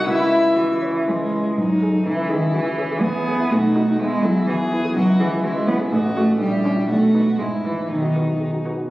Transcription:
0.05 1.05 C#2 medium
0.05 0.50 E4 medium
0.05 0.87 E4 medium
0.05 0.81 E5 medium
0.19 0.39 E4 soft
0.31 0.51 E5 medium
0.44 0.64 E4 soft
0.56 1.09 E3 medium
0.56 0.69 F#4 soft
0.69 0.89 E4 medium
0.82 1.02 C#5 medium
0.94 1.07 E5 soft
1.07 1.55 C#2 soft
1.07 1.58 G#3 medium
1.19 1.39 E4 soft
1.31 1.51 E4 soft
1.31 1.52 C#5 soft
1.44 1.57 E4 soft
1.57 2.04 G#2 soft
1.57 2.05 F#3 medium
1.57 2.08 D#4 soft
1.69 1.89 D#4 soft
1.81 2.00 G#4 soft
1.81 2.01 A4 soft
1.93 2.05 D#4 soft
2.05 3.00 C#2 soft
2.05 2.31 E3 medium
2.05 3.01 E4 soft
2.16 2.37 E4 soft
2.29 2.53 D#3 medium
2.29 2.49 G#4 soft
2.41 2.61 E4 soft
2.53 3.03 E3 medium
2.53 2.66 F#4 soft
2.66 2.86 E4 soft
2.79 2.97 G#4 soft
2.79 2.98 C#5 soft
2.91 3.03 G#4 soft
3.01 3.50 E2 soft
3.01 3.52 B3 medium
3.01 3.53 G#4 medium
3.15 3.35 E4 soft
3.28 3.47 G#4 soft
3.28 3.45 G#4 medium
3.40 3.52 E4 soft
3.51 3.98 B1 medium
3.51 3.98 A3 medium
3.51 4.01 F#4 medium
3.64 3.83 D#4 soft
3.75 3.93 D#4 medium
3.75 3.95 F#4 soft
3.88 4.00 D#4 soft
3.99 4.93 E2 medium
3.99 4.24 G#3 medium
3.99 4.50 E4 medium
4.12 4.31 E4 soft
4.22 4.46 F#3 medium
4.22 4.42 E4 medium
4.22 4.43 G#4 soft
4.36 4.55 E4 soft
4.46 4.54 E3 medium
4.46 4.60 F#4 soft
4.46 4.96 G#4 medium
4.61 4.79 E4 soft
4.72 4.89 E4 medium
4.72 4.91 B4 medium
4.85 4.96 G#4 medium
4.95 5.89 C#2 medium
4.95 5.22 F#3 medium
4.95 5.43 F#4 medium
5.09 5.28 E4 soft
5.19 5.45 E3 medium
5.19 5.37 E4 medium
5.19 5.39 G#4 soft
5.33 5.51 E4 soft
5.44 5.67 G#3 medium
5.44 5.91 E4 medium
5.44 5.56 F#4 soft
5.56 5.75 E4 soft
5.67 5.75 B3 medium
5.67 5.86 E4 medium
5.67 5.87 C#5 soft
5.80 5.92 G#4 soft
5.91 6.39 A1 medium
5.91 5.99 A3 medium
5.91 6.40 F#4 medium
6.04 6.24 F#4 soft
6.15 6.39 A3 medium
6.15 6.35 F#4 medium
6.15 6.36 A4 soft
6.28 6.40 F#4 soft
6.39 6.87 A#1 medium
6.39 6.89 G3 medium
6.39 6.89 G4 medium
6.52 6.72 E4 soft
6.64 6.83 C#4 medium
6.64 6.84 C#5 soft
6.76 6.89 E4 soft
6.88 7.37 B1 soft
6.88 7.38 A3 medium
6.88 7.41 F#4 medium
7.02 7.22 F#4 soft
7.14 7.33 D#4 soft
7.14 7.34 B4 soft
7.26 7.39 F#4 soft
7.38 7.88 G#2 soft
7.38 7.46 G#3 medium
7.38 7.90 E4 soft
7.53 7.72 E4 soft
7.64 7.89 E3 soft
7.64 7.84 E4 soft
7.64 7.85 B4 soft
7.77 7.90 E4 soft
7.88 8.88 B1 soft
7.88 8.40 D#3 medium
7.88 8.65 D#4 soft
8.02 8.22 F#4 soft
8.15 8.35 F#4 soft
8.15 8.35 B4 soft
8.27 8.48 F#4 soft
8.40 8.53 G#4 soft
8.53 8.73 F#4 soft
8.65 8.85 F#4 soft
8.65 8.86 B4 soft
8.76 8.90 F#4 soft

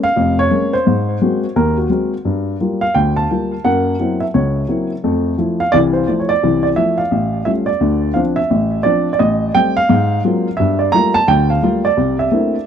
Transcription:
0.03 0.39 F5 loud
0.16 0.46 F1 medium
0.16 0.46 F2 medium
0.39 0.74 C#5 loud
0.51 0.74 G#3 soft
0.51 0.74 A#3 soft
0.51 0.74 C#4 soft
0.73 1.39 C5 medium
0.87 1.16 G#2 medium
1.21 1.44 G#3 soft
1.21 1.44 A#3 soft
1.21 1.44 C4 soft
1.21 1.44 F#4 medium
1.56 1.86 D#2 medium
1.56 1.76 A#4 medium
1.77 1.89 F#4 medium
1.90 2.13 G#3 soft
1.90 2.13 A#3 soft
1.90 2.13 C4 soft
1.90 2.14 F#4 soft
2.25 2.55 G2 medium
2.60 2.83 G3 medium
2.60 2.83 A#3 soft
2.60 2.84 F4 soft
2.81 2.93 F5 medium
2.95 3.25 D2 medium
2.95 3.15 G5 medium
3.16 3.66 A5 medium
3.31 3.53 G3 soft
3.31 3.53 A#3 soft
3.31 3.53 F4 soft
3.65 3.94 F#2 medium
3.65 3.94 A#3 medium
3.65 4.17 F#5 medium
4.00 4.22 F#3 soft
4.00 4.22 A#3 soft
4.00 4.23 C4 soft
4.00 4.23 E4 medium
4.20 4.25 E5 medium
4.34 4.64 C#2 medium
4.34 4.86 C#5 medium
4.68 4.91 F#3 soft
4.68 4.91 A#3 soft
4.68 4.92 C4 soft
4.68 4.92 E4 medium
5.04 5.33 F2 medium
5.04 5.33 A3 medium
5.38 5.61 F3 medium
5.38 5.61 A3 soft
5.38 5.61 E4 soft
5.60 5.72 F5 medium
5.72 6.03 C2 medium
5.72 6.03 E3 medium
5.72 5.77 D5 loud
5.93 6.21 C5 medium
6.08 6.31 F3 soft
6.08 6.31 A3 soft
6.08 6.31 E4 soft
6.20 6.29 C#5 medium
6.29 6.61 D5 medium
6.43 6.72 C2 medium
6.43 6.73 E3 medium
6.63 6.68 D5 medium
6.76 7.00 F3 medium
6.76 7.00 A3 soft
6.76 7.00 E4 soft
6.76 6.97 E5 medium
6.98 7.63 F5 medium
7.11 7.41 A1 medium
7.45 7.69 G3 soft
7.45 7.69 A3 soft
7.45 7.69 C#4 soft
7.45 7.69 F4 soft
7.45 7.50 E5 medium
7.66 8.11 D5 medium
7.81 8.11 D2 medium
7.81 8.11 D3 medium
8.14 8.38 F3 soft
8.14 8.38 C4 medium
8.14 8.38 D4 medium
8.14 8.19 F5 medium
8.36 8.81 E5 medium
8.50 8.80 A1 medium
8.83 9.08 F3 medium
8.83 9.08 C4 soft
8.83 9.08 D4 medium
8.83 9.11 D5 medium
9.13 9.19 D5 medium
9.19 9.49 A1 medium
9.19 9.52 D#5 medium
9.55 9.77 G3 soft
9.55 9.77 A3 soft
9.55 9.78 C4 medium
9.55 9.75 G5 loud
9.77 10.21 F5 loud
9.89 10.19 G#2 medium
10.25 10.47 F#3 medium
10.25 10.47 G#3 soft
10.25 10.47 A#3 soft
10.25 10.47 C4 soft
10.25 10.47 F4 medium
10.57 10.89 G2 medium
10.57 10.80 E5 medium
10.79 10.93 D5 medium
10.92 11.16 G3 medium
10.92 11.16 A3 soft
10.92 11.17 A#3 soft
10.92 11.17 F4 medium
10.92 11.15 A#5 loud
11.14 11.28 A5 loud
11.28 11.57 D2 medium
11.28 11.58 D3 medium
11.28 11.50 G5 loud
11.50 11.82 F5 medium
11.63 11.85 G3 medium
11.63 11.85 A3 soft
11.63 11.86 A#3 soft
11.63 11.86 F4 medium
11.85 12.16 D5 medium
11.97 12.27 C2 medium
12.19 12.63 E5 medium
12.31 12.54 A3 medium
12.31 12.54 A#3 soft
12.31 12.55 C4 soft
12.31 12.55 D4 soft
12.31 12.55 E4 medium

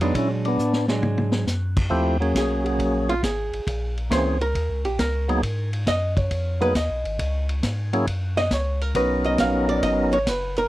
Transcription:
0.00 0.13 F2 medium
0.00 0.56 F#3 medium
0.00 0.56 G#3 medium
0.00 0.15 B3 medium
0.00 0.57 D4 medium
0.00 0.14 D#4 medium
0.00 ride soft
0.14 0.57 A#2 medium
0.14 0.31 C#4 medium
0.14 0.29 E4 medium
0.14 kick soft
0.14 ride medium
0.45 0.87 B3 medium
0.45 0.86 D4 medium
0.45 ride soft
0.59 1.01 A2 medium
0.59 hi-hat pedal medium
0.73 snare medium
0.88 1.44 F#3 medium
0.88 1.44 G#3 medium
0.88 1.45 D4 medium
0.88 snare medium
1.02 1.45 G#2 medium
1.02 high tom medium
1.18 high tom medium
1.32 snare medium
1.47 1.90 F#2 medium
1.47 snare medium
1.47 hi-hat pedal medium
1.77 kick medium
1.77 crash medium
1.90 2.33 D#2 medium
1.90 2.17 F3 medium
1.90 2.17 A3 medium
1.90 2.18 C4 medium
1.90 2.18 E4 medium
1.90 2.18 G4 medium
1.90 kick soft
2.20 3.14 F#3 medium
2.20 3.15 A#3 medium
2.20 3.15 C#4 medium
2.20 3.15 G#4 medium
2.20 ride soft
2.35 2.78 B1 medium
2.35 2.66 G#4 medium
2.35 kick soft
2.35 snare medium
2.35 hi-hat pedal medium
2.35 ride medium
2.66 3.09 F#4 medium
2.66 ride soft
2.79 3.22 A#1 medium
2.79 kick soft
2.79 ride soft
3.09 3.23 F4 medium
3.09 ride soft
3.23 3.51 G#1 medium
3.23 3.93 G#4 medium
3.23 kick soft
3.23 snare medium
3.23 hi-hat pedal soft
3.23 ride medium
3.53 3.60 G#1 soft
3.53 ride soft
3.67 4.10 A#1 medium
3.67 kick soft
3.67 ride medium
3.97 ride soft
4.10 4.54 C#2 medium
4.10 4.38 E3 medium
4.10 4.38 A#3 soft
4.10 4.38 C4 medium
4.10 4.38 C#4 soft
4.10 4.38 G#4 medium
4.10 4.41 C5 medium
4.10 kick soft
4.10 snare medium
4.10 hi-hat pedal medium
4.10 ride medium
4.41 4.82 A#4 medium
4.41 ride soft
4.55 4.69 D#2 medium
4.55 kick soft
4.55 ride medium
4.69 4.84 C#2 soft
4.84 4.98 A#1 medium
4.84 4.99 G4 medium
4.84 ride soft
4.99 5.42 C#2 medium
4.99 5.69 A#4 medium
4.99 kick soft
4.99 snare medium
4.99 hi-hat pedal medium
4.99 ride medium
5.28 5.41 F#3 medium
5.28 5.42 A#3 medium
5.28 5.42 B3 medium
5.28 5.42 D#4 medium
5.28 5.42 G#4 medium
5.28 ride soft
5.43 5.86 G#2 medium
5.43 kick soft
5.43 ride medium
5.73 ride soft
5.87 6.30 F#2 medium
5.87 6.17 D#5 loud
5.87 kick soft
5.87 snare medium
5.87 hi-hat pedal medium
5.87 ride medium
6.17 6.61 C#5 medium
6.17 kick medium
6.17 ride soft
6.31 6.74 F2 medium
6.31 kick soft
6.31 ride medium
6.61 6.74 F#3 medium
6.61 6.74 A#3 medium
6.61 6.74 B3 medium
6.61 6.74 D#4 medium
6.61 6.74 G#4 medium
6.61 6.75 B4 medium
6.61 ride soft
6.75 6.89 D#2 medium
6.75 7.46 D#5 medium
6.75 kick soft
6.75 snare medium
6.75 hi-hat pedal medium
6.75 ride medium
6.90 7.05 B1 medium
7.04 7.18 G#1 medium
7.04 ride soft
7.19 7.62 C#2 medium
7.19 kick soft
7.19 ride medium
7.49 ride soft
7.63 8.06 G#2 medium
7.63 kick soft
7.63 snare medium
7.63 hi-hat pedal medium
7.63 ride medium
7.93 8.06 F#3 medium
7.93 8.06 A#3 medium
7.93 8.06 C#4 medium
7.93 8.06 E4 medium
7.93 8.07 G#4 medium
7.93 ride soft
8.07 8.50 F#2 medium
8.07 kick soft
8.07 ride medium
8.37 8.53 D#5 loud
8.37 snare soft
8.37 ride soft
8.51 8.93 C#2 medium
8.51 8.82 C#5 medium
8.51 kick soft
8.51 snare medium
8.51 hi-hat pedal medium
8.51 ride medium
8.81 8.95 A#4 loud
8.81 ride soft
8.95 9.37 B1 medium
8.95 10.18 F#3 medium
8.95 10.19 B3 medium
8.95 10.19 C#4 medium
8.95 10.19 D#4 medium
8.95 10.19 A#4 medium
8.95 9.25 B4 medium
8.95 kick soft
8.95 ride medium
9.24 9.39 D#5 medium
9.24 ride soft
9.38 9.81 A#1 medium
9.38 9.69 F5 medium
9.38 kick soft
9.38 snare medium
9.38 hi-hat pedal medium
9.38 ride medium
9.69 9.83 D5 medium
9.69 ride soft
9.83 10.25 G#1 medium
9.83 10.12 D#5 medium
9.83 kick soft
9.83 ride medium
10.12 10.29 C#5 loud
10.12 ride soft
10.26 10.68 F#1 medium
10.26 10.57 B4 medium
10.26 kick soft
10.26 snare medium
10.26 hi-hat pedal medium
10.26 ride medium
10.56 10.68 A#4 loud
10.56 ride soft

